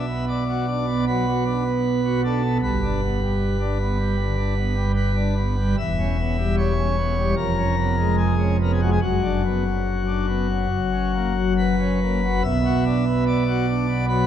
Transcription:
Already playing: B1 B2 E5
0.08 B3
0.28 D5
0.49 F#4
0.68 D4
0.87 B3
1.07 F#3 B4
1.27 F#4
1.46 D4
1.66 B3
2.05 F#4
2.24 D4 A4
2.44 B3
2.63 G1 G2 B4
2.83 D4
3.02 B3
3.22 G3
3.61 D4
3.81 B3
3.99 G3
4.19 D3
4.37 D4
4.56 B3
4.76 G3
4.96 B4
5.16 D4
5.37 B3
5.58 G3
5.78 E1 E2 E5
5.99 C#4
6.18 B3
6.37 G3
6.57 C#5
6.78 C#4
6.97 B3
7.17 G3
7.37 F1 F2 A#4
7.57 C#4
7.77 B3
7.97 G#3
8.18 G#4
8.39 C#4
8.59 B3 A#4
8.73 G#4
8.80 G#3 F#4
8.91 G#4
9.01 F#1 F#2 F#4
9.23 D4
9.45 B3
9.65 F#3
10.07 D4
10.28 B3
10.50 F#3
10.71 F#1 F#2
10.92 C#4
11.14 A#3
11.36 F#3
11.58 B4
11.79 C#4
12.01 A#3
12.22 F#3
12.44 B1 B2 E5
12.66 F#4
12.86 D4
13.07 B3
13.27 D5
13.48 F#4
13.68 D4
13.89 B3
14.08 F#3 B4

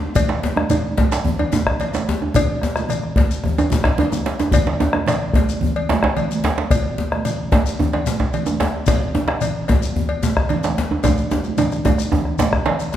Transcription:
0.15 bombo low, cowbell, high conga, low conga, djembe bass, shekere
0.29 djembe slap
0.43 djembe slap, djembe tone
0.56 bombo rim, djembe slap, djembe tone, high conga
0.70 cowbell, djembe slap, low conga, djembe bass, shekere
0.97 bombo rim, bombo low, cowbell, djembe slap, high conga
1.12 djembe slap, shekere
1.24 high conga, low conga, djembe bass
1.38 cowbell, high conga, djembe tone
1.52 djembe slap, high conga, djembe tone, djembe bass, shekere
1.66 bombo rim, bombo low, high conga
1.80 cowbell, djembe slap, high conga, low conga, shekere
1.93 djembe slap, high conga, shekere
2.09 djembe slap, djembe tone
2.22 djembe tone
2.34 bombo rim, bombo low, cowbell, djembe slap, high conga, low conga, djembe bass, shekere
2.49 djembe slap
2.62 bombo rim, djembe slap, high conga, djembe tone, shekere
2.76 bombo rim, djembe slap, high conga, shekere
2.89 bombo rim, cowbell, djembe slap, high conga, low conga, shekere
3.03 bombo rim, high conga
3.16 bombo low, cowbell, djembe slap, high conga, djembe tone
3.30 high conga, shekere
3.44 bombo rim, djembe slap, high conga, low conga, djembe bass
3.58 cowbell, djembe tone, shekere
3.70 djembe slap, high conga, djembe tone, shekere
3.84 bombo rim, bombo low, djembe slap, high conga, djembe bass
3.98 bombo rim, cowbell, high conga, djembe tone, low conga, djembe bass
4.12 bombo rim, high conga, djembe tone, djembe bass, shekere
4.26 djembe slap
4.39 bombo rim, djembe slap, djembe tone, shekere
4.51 bombo low, cowbell, high conga, djembe tone, low conga, djembe bass, shekere
4.66 djembe slap
4.80 djembe slap, djembe tone
4.93 bombo rim, djembe slap, high conga, djembe tone
5.06 cowbell, djembe slap, low conga, shekere
5.33 bombo rim, bombo low, cowbell, djembe slap, high conga, djembe tone
5.49 shekere
5.61 high conga, low conga, djembe bass
5.75 cowbell, high conga
5.89 djembe slap, high conga, djembe tone
6.03 bombo rim, bombo low, djembe slap, high conga
6.17 cowbell, djembe slap, high conga, low conga, shekere
6.31 high conga, shekere
6.44 djembe slap, djembe tone
6.58 djembe slap
6.70 bombo low, cowbell, high conga, djembe bass, low conga, shekere
6.84 djembe slap
6.98 djembe slap, djembe tone
7.12 bombo rim, djembe slap, high conga
7.25 cowbell, djembe slap, low conga, shekere
7.52 bombo rim, bombo low, cowbell, djembe slap, high conga, djembe tone
7.66 shekere
7.79 djembe tone, high conga, low conga, djembe bass
7.93 cowbell, djembe slap, high conga
8.06 djembe slap, high conga, shekere
8.20 bombo low, djembe slap, high conga
8.33 cowbell, djembe slap, high conga, low conga, shekere
8.46 djembe tone, high conga, shekere
8.60 djembe slap, djembe tone
8.86 bombo low, cowbell, djembe slap, high conga, djembe bass, low conga, shekere
9.02 djembe slap
9.15 djembe slap, djembe tone
9.28 bombo rim, djembe slap
9.41 cowbell, djembe slap, low conga, shekere
9.68 bombo rim, bombo low, cowbell, djembe slap, djembe tone, high conga
9.82 shekere
9.96 high conga, djembe bass, low conga
10.09 cowbell, high conga
10.23 djembe slap, high conga, djembe tone, shekere
10.37 bombo rim, bombo low, high conga
10.49 cowbell, djembe slap, high conga, djembe tone, low conga, shekere
10.63 djembe slap, high conga, shekere
10.78 djembe slap, djembe tone
10.91 djembe tone
11.04 bombo low, cowbell, djembe slap, high conga, djembe tone, low conga, djembe bass, shekere
11.17 djembe slap, shekere
11.31 djembe slap, djembe tone, shekere
11.44 djembe slap, high conga, shekere
11.58 cowbell, djembe tone, low conga, shekere
11.72 bombo rim, djembe slap, high conga, shekere
11.85 bombo rim, bombo low, cowbell, djembe slap, high conga, djembe tone, shekere
11.98 bombo rim, shekere
12.12 djembe slap, djembe tone, high conga, low conga, djembe bass
12.25 bombo rim, djembe slap
12.38 djembe slap, high conga, djembe tone, shekere
12.53 bombo rim, bombo low
12.66 cowbell, djembe slap, low conga
12.67 djembe slap
12.79 djembe slap, shekere
12.92 bombo rim, high conga, shekere

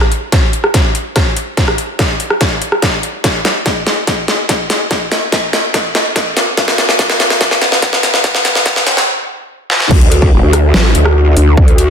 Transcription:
0.01 cross-stick
0.12 closed hi-hat
0.32 kick, snare, closed hi-hat
0.53 closed hi-hat
0.64 cross-stick
0.74 kick, snare, closed hi-hat
0.95 closed hi-hat
1.16 kick, cross-stick, snare, closed hi-hat
1.37 closed hi-hat
1.57 kick, snare, closed hi-hat
1.68 cross-stick
1.78 closed hi-hat
1.99 kick, snare, closed hi-hat
2.20 closed hi-hat
2.30 cross-stick
2.41 kick, snare, closed hi-hat
2.62 closed hi-hat
2.72 cross-stick
2.82 kick, snare, closed hi-hat
3.03 closed hi-hat
3.24 kick, snare, closed hi-hat
3.45 snare, closed hi-hat
3.66 kick, snare, closed hi-hat
3.87 snare, closed hi-hat
4.07 kick, snare, closed hi-hat
4.28 snare, closed hi-hat
4.49 kick, snare, closed hi-hat
4.70 snare, open hi-hat
4.91 kick, snare, closed hi-hat
5.12 snare, closed hi-hat
5.32 kick, snare, closed hi-hat
5.53 snare, closed hi-hat
5.74 kick, snare, closed hi-hat
5.95 snare, closed hi-hat
6.16 kick, snare, closed hi-hat
6.37 snare, open hi-hat
6.57 kick, snare, closed hi-hat
6.68 snare
6.78 snare, closed hi-hat
6.89 snare
6.99 kick, snare, closed hi-hat
7.10 snare
7.20 snare, closed hi-hat
7.30 snare
7.41 kick, snare, closed hi-hat
7.51 snare
7.62 snare, closed hi-hat
7.72 snare
7.82 kick, snare, closed hi-hat
7.93 snare
8.03 snare, open hi-hat
8.14 snare
8.24 kick, snare, closed hi-hat
8.35 snare
8.45 snare, closed hi-hat
8.55 snare
8.66 kick, snare, closed hi-hat
8.76 snare
8.87 snare, closed hi-hat
8.97 snare
9.70 snare
9.80 snare
9.91 D2, kick, crash
10.01 closed hi-hat
10.12 closed hi-hat
10.22 kick
10.32 F1
10.43 D2
10.53 cross-stick, closed hi-hat
10.74 A1, snare
10.95 D2, closed hi-hat
11.05 cross-stick
11.37 D2, open hi-hat
11.57 kick
11.68 closed hi-hat
11.78 closed hi-hat

